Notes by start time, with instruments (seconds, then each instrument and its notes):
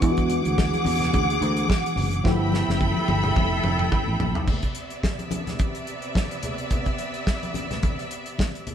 0.01 fingered electric bass E2, tine electric piano E3 G#3 B3 D4 E4, string section G#4 F#5 D6, kick, closed hi-hat, muted conga
0.11 tine electric piano F#4
0.17 kick, closed hi-hat
0.30 closed hi-hat, high conga
0.45 fingered electric bass D2, closed hi-hat
0.58 kick, snare, muted conga
0.73 closed hi-hat, high conga
0.85 fingered electric bass E2, open hi-hat, muted conga, high conga
1.00 snare, closed hi-hat, low conga
1.13 fingered electric bass D2, kick, closed hi-hat, muted conga, high conga
1.30 closed hi-hat
1.41 fingered electric bass D2, closed hi-hat
1.57 closed hi-hat
1.68 kick, snare, muted conga, high conga
1.86 closed hi-hat
1.96 fingered electric bass F#1, open hi-hat, low conga
2.13 closed hi-hat
2.23 fingered electric bass G1, tine electric piano F3 A3 B3 E4 G4, string section A4 E5 G5 B5, kick, snare
2.52 snare, muted conga, high conga
2.68 fingered electric bass F#1, snare
2.81 kick, high tom, muted conga
2.97 high conga
3.08 fingered electric bass G1, high tom, high conga
3.24 mid tom, low conga
3.36 fingered electric bass F1, kick, mid tom, muted conga, high conga
3.64 fingered electric bass F1, mid tom, muted conga
3.79 mid tom
3.92 kick, mid tom, muted conga, high conga
4.08 fingered electric bass A1
4.20 fingered electric bass A#1, floor tom, muted conga, low conga
4.35 fingered electric bass B1, floor tom
4.47 string section C3 B3 D5 E5, kick, crash, muted conga, low conga
4.62 kick, closed hi-hat
4.75 closed hi-hat
4.90 closed hi-hat
5.03 kick, snare, muted conga
5.19 closed hi-hat, high conga
5.31 closed hi-hat, muted conga, high conga
5.47 snare, closed hi-hat, low conga
5.59 kick, closed hi-hat, high conga
5.75 closed hi-hat
5.87 closed hi-hat, muted conga
6.02 closed hi-hat
6.15 kick, snare, high conga
6.31 closed hi-hat
6.43 closed hi-hat, low conga
6.58 closed hi-hat
6.71 kick, closed hi-hat, low conga
6.86 kick, closed hi-hat
6.98 closed hi-hat, muted conga
7.14 closed hi-hat
7.27 kick, snare, muted conga
7.43 closed hi-hat, high conga
7.54 closed hi-hat, muted conga, high conga
7.71 snare, closed hi-hat, low conga
7.83 kick, closed hi-hat, muted conga, high conga
7.99 closed hi-hat
8.11 closed hi-hat
8.26 closed hi-hat
8.39 kick, snare, high conga
8.55 closed hi-hat
8.67 closed hi-hat, low conga